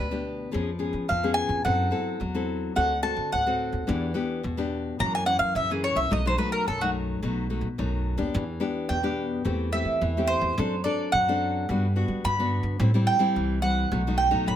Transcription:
Already playing: nylon-string guitar B2, mandolin B4
0.00 upright bass D2
0.11 nylon-string guitar B3 D4 G4
0.52 upright bass F2, nylon-string guitar F3 B3 C#4 G#4
0.79 nylon-string guitar B3 C#4 G#4
0.93 upright bass F3
1.08 upright bass F2, nylon-string guitar F3, mandolin F5
1.23 nylon-string guitar B3 C#4 G#4
1.34 mandolin G#5
1.49 upright bass F2
1.64 upright bass F#2, nylon-string guitar F#3 C4 E4 A4, mandolin F#5
1.91 nylon-string guitar C4 E4 A4
2.20 upright bass E2, nylon-string guitar F#3
2.35 nylon-string guitar C4 E4 A4
2.75 upright bass D2, nylon-string guitar D3 C4 F#4 A4, mandolin F#5
3.02 nylon-string guitar C4 F#4 A4, mandolin A5
3.17 upright bass D3
3.32 upright bass D2, nylon-string guitar A2, mandolin F#5
3.46 nylon-string guitar C4 F#4 A4
3.72 upright bass D#2
3.87 upright bass E2, nylon-string guitar E3 B3 D4 G4
4.14 nylon-string guitar B3 D4 G4
4.43 upright bass E2, nylon-string guitar B2
4.57 nylon-string guitar B3 D4 G4
4.99 nylon-string guitar F#2 E3 A#3 C#4, upright bass F#2, mandolin A#5
5.15 mandolin G#5
5.25 nylon-string guitar E3 A#3 C#4, mandolin F#5
5.39 upright bass F#3, mandolin F5
5.55 upright bass F#2, nylon-string guitar C#3, mandolin E5
5.70 nylon-string guitar E3 A#3 C#4, mandolin G#4
5.84 mandolin C#5
5.95 upright bass C2, mandolin E5
6.10 upright bass B1, nylon-string guitar B2 F#3 A3 D#4, mandolin D#5
6.26 nylon-string guitar F#3 A3 D#4, mandolin C5
6.38 nylon-string guitar F#3 A3 D#4, mandolin B4
6.52 mandolin A#4
6.66 upright bass B1, nylon-string guitar F#2, mandolin A4
6.81 nylon-string guitar F#3 A3 D#4, mandolin F#4
7.22 upright bass B1, nylon-string guitar B2 F#3 A3 D#4
7.50 nylon-string guitar F#3 A3 D#4
7.61 upright bass B2
7.78 upright bass B1, nylon-string guitar F#2 F#3 A3 D#4
8.17 upright bass D#2, nylon-string guitar B3 D4 G4
8.34 upright bass E2, nylon-string guitar E3
8.60 nylon-string guitar B3 D4 G4
8.89 upright bass E2, nylon-string guitar B2, mandolin G5
9.03 nylon-string guitar B3 D4 G4
9.45 upright bass E2, nylon-string guitar E3 A3 C4 G4
9.72 nylon-string guitar A3 C4 G4, mandolin E5
9.85 upright bass E3
10.01 upright bass E2, nylon-string guitar E3
10.17 nylon-string guitar A3 C4 G4
10.27 mandolin C5
10.41 upright bass E2
10.58 upright bass F#2, nylon-string guitar F#3 C4 D4 A4
10.84 nylon-string guitar C4 D4 A4, mandolin D5
11.12 upright bass F#2, nylon-string guitar F#3, mandolin F#5
11.28 nylon-string guitar C4 D4 A4
11.69 upright bass G2, nylon-string guitar G3 B3 D4 F#4
11.96 nylon-string guitar B3 D4 F#4
12.08 upright bass G3
12.24 upright bass G2, nylon-string guitar D3, mandolin B5
12.39 nylon-string guitar B3 D4 F#4
12.63 upright bass G2
12.80 upright bass A2, nylon-string guitar A2 G3 C4 E4
12.94 nylon-string guitar G3 C4 E4
13.07 mandolin G5
13.19 nylon-string guitar G3 C4 E4
13.36 upright bass C2, nylon-string guitar E3
13.62 nylon-string guitar G3 C4 E4, mandolin F#5
13.92 upright bass B1, nylon-string guitar B2 F#3 A3 D#4
14.07 nylon-string guitar F#3 A3 D#4
14.18 mandolin G5
14.31 upright bass B2, nylon-string guitar F#3 A3 D#4
14.46 upright bass B1, nylon-string guitar F#2, mandolin B5

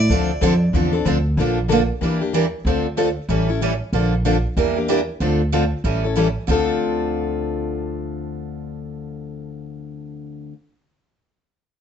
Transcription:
0.00 steel-string acoustic guitar D5
0.09 upright bass D2, steel-string acoustic guitar D3 F3 C4 D4 A4
0.41 upright bass F2, steel-string acoustic guitar D3 F3 C4 D4 A4
0.73 upright bass E2, steel-string acoustic guitar D3 F3 C4 D4 A4
0.93 steel-string acoustic guitar C4 D4 A4
1.05 upright bass D2, steel-string acoustic guitar D3 F3 C4 D4 A4
1.37 upright bass A#1, steel-string acoustic guitar D3 F3 A#3 D4 A4
1.68 steel-string acoustic guitar D3 F3 A#3 D4 A4
2.01 upright bass E2, steel-string acoustic guitar E3 G3 A#3 D4 E4 G4 A#4
2.21 steel-string acoustic guitar A#3 D4 G4
2.33 steel-string acoustic guitar E3 G3 A#3 D4 E4 G4 A#4
2.65 upright bass D2, steel-string acoustic guitar D3 F3 A3 C4 D4 F4 A4
2.97 steel-string acoustic guitar D3 F3 A3 C4 D4 F4 A4
3.29 upright bass A1, steel-string acoustic guitar E3 G3 C#4 E4 A4
3.49 steel-string acoustic guitar C#4 E4 A4
3.61 steel-string acoustic guitar E3 G3 C#4 E4 A4
3.93 upright bass A#1, steel-string acoustic guitar D3 F3 A#3 D4 A4
4.25 steel-string acoustic guitar D3 F3 A#3 D4 A4
4.57 upright bass E2, steel-string acoustic guitar E3 G3 A#3 D4 E4 G4 A#4
4.76 steel-string acoustic guitar A#3 D4 G4
4.89 steel-string acoustic guitar E3 G3 A#3 D4 E4 G4 A#4
5.20 upright bass D2, steel-string acoustic guitar D3 F3 A3 C4 D4 F4 A4
5.53 steel-string acoustic guitar D3 F3 A3 C4 D4 F4 A4
5.84 upright bass A1, steel-string acoustic guitar E3 G3 C#4 E4 A4
6.04 steel-string acoustic guitar C#4 E4 A4
6.16 steel-string acoustic guitar E3 G3 C#4 E4 A4
6.48 upright bass D2, steel-string acoustic guitar D3 F3 A3 C4 D4 F4 A4

